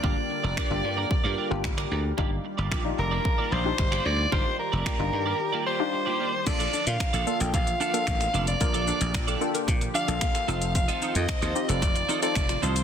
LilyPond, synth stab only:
\new Staff \with { instrumentName = "Synth stab" } { \time 4/4 \key bes \major \tempo 4 = 112 <bes d' f' g'>4 r16 <bes d' f' g'>4~ <bes d' f' g'>16 r16 <bes d' f' g'>4 r16 | <d' ees' f' g'>4 r16 <d' ees' f' g'>4~ <d' ees' f' g'>16 r16 <d' ees' f' g'>4 r16 | <d' ees' f' g'>4 r16 <d' ees' f' g'>4~ <d' ees' f' g'>16 r16 <d' ees' f' g'>4 r16 | <bes d' f' a'>4~ <bes d' f' a'>16 r16 <bes d' f' a'>4 r16 <bes d' f' a'>4 r16 |
<bes d' f' bes'>4~ <bes d' f' bes'>16 r16 <bes d' f' a'>4 r16 <bes d' f' a'>8. <c' ees' f' a'>8~ | <c' ees' f' a'>4 r8 <c' ees' f' g'>4 r16 <c' ees' f' a'>4 r16 | }